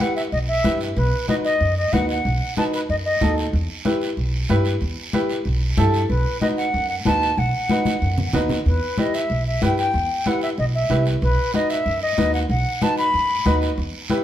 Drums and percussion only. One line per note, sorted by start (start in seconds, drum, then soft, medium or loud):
0.00 high conga medium
0.00 short guiro medium
0.17 short guiro medium
0.32 high conga soft
0.32 long guiro medium
0.64 high conga medium
0.64 short guiro medium
0.81 short guiro medium
0.97 high conga soft
0.97 long guiro medium
1.29 high conga medium
1.29 short guiro medium
1.45 short guiro medium
1.61 high conga soft
1.61 long guiro medium
1.93 high conga medium
1.93 short guiro medium
2.09 short guiro medium
2.25 high conga soft
2.25 long guiro medium
2.57 high conga medium
2.57 short guiro medium
2.73 short guiro medium
2.89 high conga soft
2.89 long guiro medium
3.21 high conga medium
3.21 short guiro medium
3.38 short guiro medium
3.53 high conga soft
3.53 long guiro medium
3.85 high conga medium
3.85 short guiro medium
4.02 short guiro medium
4.17 high conga soft
4.17 long guiro medium
4.49 high conga medium
4.49 short guiro medium
4.65 short guiro medium
4.81 high conga soft
4.81 long guiro medium
5.13 high conga medium
5.13 short guiro medium
5.29 short guiro medium
5.45 high conga soft
5.45 long guiro medium
5.77 high conga medium
5.77 short guiro medium
5.94 short guiro medium
6.09 high conga soft
6.09 long guiro medium
6.42 high conga medium
6.42 short guiro medium
6.58 short guiro medium
6.73 high conga soft
6.73 long guiro medium
7.05 high conga medium
7.05 short guiro medium
7.22 short guiro medium
7.37 high conga soft
7.37 long guiro medium
7.69 high conga medium
7.69 short guiro medium
7.85 high conga medium
7.85 short guiro medium
8.02 long guiro medium
8.18 low conga medium
8.33 low conga medium
8.33 short guiro medium
8.49 low conga medium
8.49 short guiro medium
8.65 high conga soft
8.65 long guiro medium
8.98 high conga medium
8.98 short guiro medium
9.14 short guiro medium
9.30 high conga soft
9.30 long guiro medium
9.62 high conga medium
9.62 short guiro medium
9.78 short guiro medium
9.94 high conga soft
9.94 long guiro medium
10.26 high conga medium
10.26 short guiro medium
10.42 short guiro medium
10.58 high conga soft
10.58 long guiro medium
10.90 high conga medium
10.90 short guiro medium
11.06 short guiro medium
11.22 high conga soft
11.22 long guiro medium
11.54 high conga medium
11.54 short guiro medium
11.70 short guiro medium
11.86 high conga soft
11.86 long guiro medium
12.18 high conga medium
12.18 short guiro medium
12.34 short guiro medium
12.50 high conga soft
12.50 long guiro medium
12.82 high conga medium
12.82 short guiro medium
12.97 short guiro medium
13.14 high conga soft
13.14 long guiro medium
13.46 high conga medium
13.46 short guiro medium
13.62 short guiro medium
13.78 high conga soft
13.78 long guiro medium
14.10 high conga medium
14.10 short guiro medium